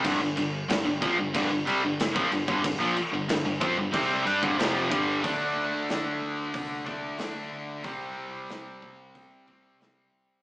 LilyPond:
<<
  \new Staff \with { instrumentName = "Distorted electric guitar" } { \clef bass \time 4/4 \key g \minor \tempo 4 = 92 <g, d>16 <g, d>16 <g, d>8 <g, d>16 <g, d>16 <bes, f>16 <g, d>16 <g, d>16 <g, d>16 <c g>16 <g, d>8 <bes, f>16 <g, d>16 <g, d>16 | <g, d>16 <bes, f>16 r16 <g, d>16 <g, d>16 <g, d>16 <f c'>16 <g, d>16 <c g c'>8 <g d'>16 <g, d>16 <f, c f>8 <g, d g>8 | <d a d'>2~ <d a d'>8 <d a d'>8 <d a d'>4 | <c g c'>2~ <c g c'>8 <c g c'>8 <c g c'>4 | }
  \new Staff \with { instrumentName = "Distorted electric guitar" } { \clef bass \time 4/4 \key g \minor <g, d>16 <g, d>16 <g, d>8 <g, d>16 <g, d>16 <bes, f>16 <g, d>16 <g, d>16 <g, d>16 <c g>16 <g, d>8 <bes, f>16 <g, d>16 <g, d>16 | <g, d>16 <bes, f>16 r16 <g, d>16 <g, d>16 <g, d>16 <f c'>16 <g, d>16 <c g c'>8 <g d'>16 <g, d>16 <f, c f>8 <g, d g>8 | r1 | r1 | }
  \new Staff \with { instrumentName = "Overdriven electric guitar" } { \clef bass \time 4/4 \key g \minor <g, d>16 <g, d>16 <g, d>8 <g, d>16 <g, d>16 <bes, f>16 <g, d>16 <g, d>16 <g, d>16 <c g>16 <g, d>8 <bes, f>16 <g, d>16 <g, d>16 | <g, d>16 <bes, f>16 r16 <g, d>16 <g, d>16 <g, d>16 <f c'>16 <g, d>16 <c g c'>8 <g d'>16 <g, d>16 <f, c f>8 <g, d g>8 | <d a d'>1 | <c g c'>1 | }
  \new Staff \with { instrumentName = "Picked electric bass" } { \clef bass \time 4/4 \key g \minor g,,16 g,,16 g,,8 g,,16 g,,16 bes,,16 g,,16 g,,16 g,,16 c,16 g,,8 bes,,16 g,,16 g,,16 | g,,16 bes,,16 r16 g,,16 g,,16 g,,16 f,16 g,,16 c,8 g,16 g,,16 f,,8 g,,8 | d,8 d,8 d,8 d,8 c,4 d,8 d,8 | c,8 c,8 c,8 c,8 c,4 c,8 c,8 | }
  \new DrumStaff \with { instrumentName = "Drums" } \drummode { \time 4/4 <cymc bd>8 cymc8 <cymc sn>8 <cymc bd>8 <cymc bd>8 cymc8 <cymc sn>16 bd16 cymc16 bd16 | <cymc bd>8 cymc8 <cymc sn>8 <cymc bd>8 <cymc bd>8 cymc16 bd16 <cymc sn>8 <cymc bd>8 | <hho bd>4 <hho sn>4 <hho bd>8 bd8 <hho sn>4 | <hho bd>4 <hho sn>8 bd8 <hho bd>8 bd8 <hho sn>4 | }
>>